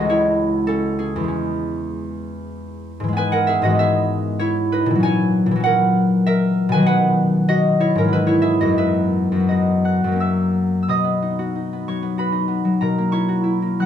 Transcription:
harp
Already playing: C#2 E3 F#4 G#4 A4 D#5
0.01 G#3 C#4
0.10 E4 C#5
0.67 C#4 A4
0.99 C#4 G#4
1.16 E2
1.20 E3 G#3
1.28 C#4
3.00 G#2 E3
3.08 G#3
3.13 B3 G#5
3.18 B4
3.32 A#4 F#5
3.47 G#4 E5
3.62 G#2 E3 F#4 D#5
3.70 G#3
3.75 B3
3.79 G#4 E5
4.39 E4 C#5
4.72 D#4 B4
4.86 A#2
4.91 E3
4.95 F#3
5.00 C#4 G#5
5.05 C#5
5.46 A#2
5.51 E3
5.56 F#3
5.60 C#4 F#5
5.65 A#4
6.26 A#4 E5
6.69 B2 G#5
6.74 D#3 F#3 B4
6.82 B3
6.86 B4 F#5
7.49 F#4 D#5
7.80 E4 C#5
7.95 G#2 C#4 A#4
8.01 E3 G#3
8.08 B3
8.13 E4 B4
8.27 E4 C#5
8.42 G#4 E5
8.61 F#2 F#4 D#5
8.65 F#3
8.69 B3
8.78 B4 E5
9.32 F#2
9.36 F#3 B3
9.49 F#4 D#5
9.85 F#5 F#6
10.04 F#2 F#3
10.12 A#3 C#4
10.20 E5 E6
10.83 E6
10.88 B2 D#5 D#6
11.04 B3
11.22 D#4
11.39 F#4
11.56 D#4
11.73 B3
11.88 F#3 C#5 C#6
12.02 B3
12.18 F#4 B4 B5
12.32 D#4
12.48 B3
12.65 F#3
12.81 B2 A#4 A#5
12.98 A#3
13.12 E4 C#5 C#6
13.29 F#4
13.44 E4
13.62 A#3
13.80 F#3 F#5 F#6

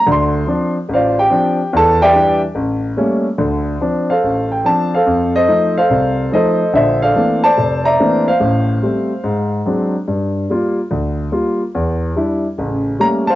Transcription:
grand piano
0.06 D2 D3
0.12 C6
0.47 F3 C4 D4
0.89 A1
0.94 F4 C5 D5 F5
1.19 G4 G5
1.30 F3 C4 D4
1.73 E2 E3 A5
1.77 A4
2.02 G4 D5 E5 G5
2.13 E3 G3 D4
2.55 A1
2.97 G3 A3 A#3 C#4
3.38 D2 D3
3.81 F3 C4 D4
4.10 A4 C5 F5
4.23 A1
4.52 G5
4.64 F3 C4 D4 A5
4.94 A4 C5 F5
5.06 F2
5.36 A4 C5 D#5
5.48 F3 A3 D#4
5.78 A4 C5 F5
5.90 C2
6.32 F3 A3 D#4 A4 C5 D#5
6.73 A#1 D3 A4 C5 E5
7.02 A4 D5 F5
7.15 E3 A3 A#3 C4 D4
7.44 C5 D5 A5
7.58 F1
7.85 D5 E5 A#5
8.00 E3 A3 A#3 C4 D4
8.28 C5 F5
8.40 A1 A2
8.82 G3 A3 C4
9.24 G#2
9.66 F#3 G#3 C4 D4
10.08 G2
10.50 G3 A#3 F4
10.91 D2
11.32 G3 A#3 F4
11.75 E2
12.16 G3 D4 E4
12.58 A1 C#3
12.99 G3 A3 A#3 C#4 A#5
13.27 C5 F5 A5

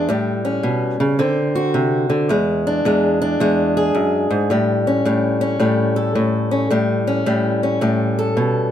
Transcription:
steel-string acoustic guitar
0.09 A2 G3
0.45 C#4
0.63 B2
1.00 C#3
1.19 D3 C4
1.55 F#4
1.74 C3
2.10 D3
2.29 E2 G#3
2.67 D4
2.85 E2 G#3
3.22 D4
3.40 E2 G#3
3.77 G#4
3.95 F#2
4.30 G#2
4.50 A2 G3
4.87 C#4
5.05 A2 G3
5.41 C#4
5.60 A2 G3
5.96 A4
6.15 A2
6.51 C#4
6.70 A2 G3
7.07 C#4
7.26 A2 G3
7.63 C#4
7.81 A2 G3
8.19 A4
8.37 B2

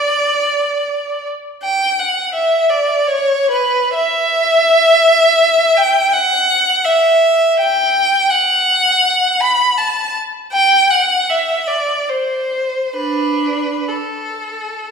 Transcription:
violin
Already playing: D5
1.63 G5
1.99 F#5
2.34 E5
2.70 D5
3.07 C#5
3.51 B4
3.94 E5
5.77 G5
6.13 F#5
6.84 E5
7.60 G5
8.30 F#5
9.40 B5
9.77 A5
10.53 G5
10.91 F#5
11.29 E5
11.67 D5
12.09 C5
12.97 D4 B4
13.88 A4

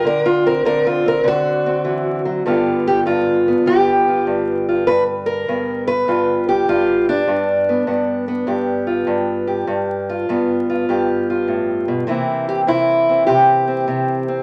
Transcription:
steel-string acoustic guitar
0.05 D3 A#4
0.26 F4
0.46 C4 A#4
0.65 D3 A#4
0.87 F4
1.06 C4 A#4
1.24 D3 F#4
1.66 C4
1.85 E3
2.25 F#3
2.46 G2 D3 B3 F4 G4
2.88 G4
3.06 G2 F4
3.48 B3
3.66 G2 G4
4.08 F4
4.27 G2
4.69 F4
4.87 G2 B4
5.26 A#4
5.48 G2 B3
5.88 B4
6.08 G2 F4
6.49 G4
6.68 G2 F4
7.09 D4
7.27 G2
7.69 B3
7.87 G2 B3
8.28 B3
8.47 G2 G4
8.87 F4
9.07 G2
9.47 G4
9.67 G2
10.09 F4
10.29 G2 B3
10.70 F4
10.89 G2 G4
11.30 F4
11.48 A2
11.88 B2
12.07 C3 E3 A#3 C4 E4
12.49 G4
12.67 C3 E4
13.09 C4
13.27 C3 G4
13.68 C4
13.88 C3
14.29 C4

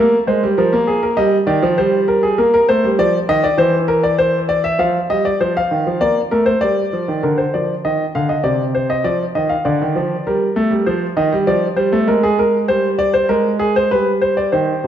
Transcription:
grand piano
Already playing: A#3 A#4
0.27 G#3 C5
0.43 G3
0.58 F3 A#4
0.73 A#3
0.87 G#4
1.03 A#4
1.17 G3 D#5
1.47 D#3 D5
1.62 F3
1.78 G3 C5
2.08 A#4
2.23 G#4
2.38 A#3 A#4
2.54 A#4
2.69 A3 C5
2.84 G3
2.99 F3 D5
3.29 D#3 D#5
3.44 D5
3.58 E3 C5
3.88 A#4
4.03 D5
4.18 C5
4.49 D5
4.64 E5
4.79 F3 F5
5.10 G3 D#5
5.25 D5
5.40 F3 C5
5.57 F5
5.71 D#3
5.87 F3
6.01 A#3 D5
6.31 A3 A#4
6.46 C5
6.61 G3 D5
6.93 F3
7.08 D#3
7.23 D3 A#4
7.38 C5
7.54 F3 D5
7.85 D#3 D#5
8.15 D3 F5
8.29 D#5
8.44 C3 D5
8.75 C5
8.90 D#5
9.04 F3 D5
9.35 D#3 D#5
9.49 F5
9.65 D3 D5
9.82 D#3
9.96 F3
10.27 G3 A#4
10.56 A3
10.71 G3
10.86 F3 C5
11.17 D#3 D#5
11.33 G3
11.47 F3 D5
11.76 G3 C5
11.93 A3
12.07 G#3 A#4
12.23 G#4
12.39 A#4
12.68 G3 C5
12.99 D5
13.14 C5
13.29 G#3 A#4
13.59 G#4
13.76 C5
13.91 G3 B4
14.21 C5
14.37 D5
14.52 D#3 C5
14.84 C3

